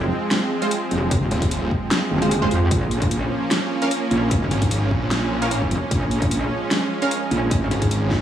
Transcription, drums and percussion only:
0.31 snare loud
0.31 closed hi-hat medium
0.62 closed hi-hat medium
0.71 closed hi-hat medium
0.91 closed hi-hat medium
1.11 kick loud
1.11 closed hi-hat medium
1.31 closed hi-hat medium
1.42 kick loud
1.42 closed hi-hat medium
1.51 closed hi-hat medium
1.71 kick medium
1.91 snare loud
1.91 closed hi-hat medium
2.22 closed hi-hat soft
2.31 closed hi-hat medium
2.42 kick medium
2.51 closed hi-hat medium
2.71 kick loud
2.71 closed hi-hat medium
2.91 closed hi-hat medium
3.02 kick loud
3.02 closed hi-hat medium
3.11 closed hi-hat medium
3.51 snare loud
3.51 closed hi-hat medium
3.82 closed hi-hat soft
3.91 closed hi-hat medium
4.11 closed hi-hat medium
4.31 kick loud
4.31 closed hi-hat medium
4.51 closed hi-hat medium
4.62 kick loud
4.62 closed hi-hat medium
4.71 closed hi-hat medium
4.91 kick medium
5.11 snare loud
5.11 closed hi-hat medium
5.42 closed hi-hat medium
5.51 closed hi-hat medium
5.62 kick medium
5.71 closed hi-hat medium
5.91 kick loud
5.91 closed hi-hat medium
6.11 closed hi-hat medium
6.22 kick loud
6.22 closed hi-hat soft
6.31 closed hi-hat medium
6.71 snare loud
6.71 closed hi-hat medium
7.02 closed hi-hat soft
7.11 closed hi-hat medium
7.31 closed hi-hat medium
7.51 kick loud
7.51 closed hi-hat medium
7.71 closed hi-hat medium
7.82 kick loud
7.82 closed hi-hat medium
7.91 closed hi-hat medium
8.11 kick medium
8.11 snare medium

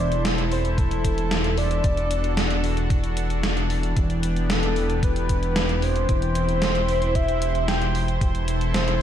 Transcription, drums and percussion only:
0.12 closed hi-hat soft
0.25 snare loud
0.25 closed hi-hat medium
0.38 closed hi-hat soft
0.52 open hi-hat medium
0.65 closed hi-hat soft
0.78 kick loud
0.78 closed hi-hat medium
0.91 closed hi-hat soft
1.04 kick medium
1.04 closed hi-hat loud
1.18 closed hi-hat soft
1.31 snare loud
1.31 closed hi-hat medium
1.44 closed hi-hat soft
1.58 open hi-hat medium
1.71 closed hi-hat soft
1.84 kick loud
1.84 closed hi-hat medium
1.97 closed hi-hat soft
2.11 closed hi-hat medium
2.24 closed hi-hat soft
2.37 snare loud
2.37 closed hi-hat medium
2.51 closed hi-hat soft
2.64 open hi-hat medium
2.77 closed hi-hat soft
2.90 kick loud
2.90 closed hi-hat medium
3.04 closed hi-hat soft
3.17 closed hi-hat medium
3.30 closed hi-hat soft
3.43 snare loud
3.43 closed hi-hat medium
3.57 closed hi-hat soft
3.70 open hi-hat medium
3.83 closed hi-hat soft
3.97 kick loud
3.97 closed hi-hat medium
4.10 closed hi-hat soft
4.23 closed hi-hat medium
4.36 closed hi-hat soft
4.50 snare loud
4.50 closed hi-hat medium
4.63 closed hi-hat soft
4.76 open hi-hat medium
4.90 closed hi-hat soft
5.03 kick loud
5.03 closed hi-hat medium
5.16 closed hi-hat soft
5.29 kick medium
5.29 closed hi-hat medium
5.43 closed hi-hat soft
5.56 snare loud
5.56 closed hi-hat medium
5.69 closed hi-hat soft
5.82 open hi-hat medium
5.96 closed hi-hat soft
6.09 kick loud
6.09 closed hi-hat medium
6.22 closed hi-hat soft
6.35 closed hi-hat medium
6.49 closed hi-hat soft
6.62 snare loud
6.62 closed hi-hat medium
6.75 closed hi-hat soft
6.88 open hi-hat medium
7.02 closed hi-hat soft
7.15 kick loud
7.15 closed hi-hat medium
7.28 closed hi-hat soft
7.42 closed hi-hat medium
7.55 closed hi-hat soft
7.68 snare loud
7.68 closed hi-hat medium
7.82 closed hi-hat soft
7.95 open hi-hat medium
8.08 closed hi-hat soft
8.21 kick loud
8.21 closed hi-hat medium
8.35 closed hi-hat soft
8.48 closed hi-hat medium
8.61 closed hi-hat soft
8.74 snare loud
8.74 closed hi-hat medium
8.88 closed hi-hat soft

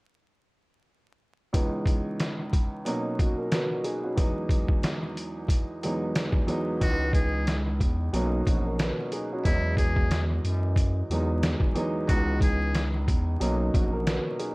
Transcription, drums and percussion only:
1.54 kick loud
1.54 closed hi-hat loud
1.86 kick medium
1.86 closed hi-hat medium
2.20 snare loud
2.20 closed hi-hat medium
2.53 kick medium
2.53 closed hi-hat medium
2.86 closed hi-hat loud
3.19 kick medium
3.19 closed hi-hat medium
3.52 snare loud
3.52 closed hi-hat medium
3.84 closed hi-hat medium
4.18 kick loud
4.18 closed hi-hat loud
4.49 kick medium
4.49 closed hi-hat medium
4.68 kick medium
4.83 snare loud
4.83 closed hi-hat medium
5.17 closed hi-hat medium
5.48 kick medium
5.48 closed hi-hat loud
5.83 closed hi-hat medium
6.15 snare loud
6.15 closed hi-hat medium
6.32 kick medium
6.48 closed hi-hat medium
6.81 kick loud
6.81 closed hi-hat loud
7.13 kick medium
7.13 closed hi-hat medium
7.47 snare loud
7.47 closed hi-hat medium
7.80 kick loud
7.80 closed hi-hat medium
8.14 closed hi-hat medium
8.47 kick medium
8.47 closed hi-hat medium
8.79 snare loud
8.79 closed hi-hat medium
9.12 closed hi-hat medium
9.45 kick loud
9.45 closed hi-hat loud
9.77 kick medium
9.77 closed hi-hat medium
9.96 kick medium
10.11 snare loud
10.11 closed hi-hat medium
10.45 closed hi-hat medium
10.76 kick medium
10.76 closed hi-hat loud
11.11 closed hi-hat medium
11.43 snare loud
11.43 closed hi-hat medium
11.60 kick medium
11.76 closed hi-hat medium
12.09 kick loud
12.09 closed hi-hat loud
12.40 kick medium
12.40 closed hi-hat medium
12.75 snare loud
12.75 closed hi-hat medium
13.08 kick loud
13.08 closed hi-hat medium
13.41 closed hi-hat loud
13.74 kick medium
13.74 closed hi-hat medium
14.07 snare loud
14.07 closed hi-hat medium
14.39 closed hi-hat medium

